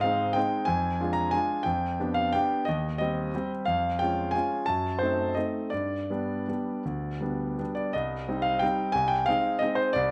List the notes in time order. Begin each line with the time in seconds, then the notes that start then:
Already playing: G#2 D#5
0.01 G#3 C4 D#4 F5
0.33 G#3 C4 D#4 G5
0.65 F2 G#5
1.00 G#3 D4 F4
1.13 A#5
1.31 G#3 D4 F4 G#5
1.63 F2 G5
2.00 B3 D4 G4
2.14 F5
2.33 B3 D4 G4 G5
2.65 D#2 D#5
2.98 G3 C4 G4 D#5
3.35 G3 C4 G4
3.65 F2 F5
3.99 G#3 C#4 F4 G5
4.31 G#3 C#4 F4 G#5
4.66 F#2 A5
4.99 A3 C4 D#4 C5
5.35 A3 C4 D#4 D#5
5.70 G2 D5
6.10 G3 B3 D4
6.48 G3 B3 D4
6.85 D2
7.21 G3 B3 D4
7.59 G3 B3 D4
7.75 D5
7.93 C2 D#5
8.28 G3 C4 D#4
8.42 F5
8.59 G3 C4 D#4 G5
8.92 C2 G#5
9.08 G5
9.26 G#3 C4 D#4 F5
9.59 G#3 C4 D#4 D#5
9.75 C5
9.93 C2 D5